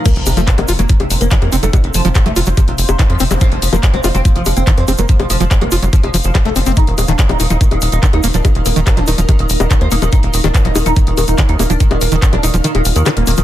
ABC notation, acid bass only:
X:1
M:4/4
L:1/16
Q:1/4=143
K:none
V:1 name="Acid bass" clef=bass
F, z2 F, z _G, F G, F, z3 _E, z C G, | F, z2 F, z _G, F G, F, z3 _E, z C G, | F, z2 F, z _G, F G, F, z3 _E, z C G, | F, z2 F, z _G, F G, F, z F, z F, A, C C |
_E, z2 E, z F, _E F, E, z3 D, z _B, F, | _E, z2 E, z F, _E F, E, z3 D, z _B, F, | _E, z2 E, z F, _E F, E, z3 D, z _B, F, | _E, z2 E, z F, _E F, E, z3 D, z _B, F, |]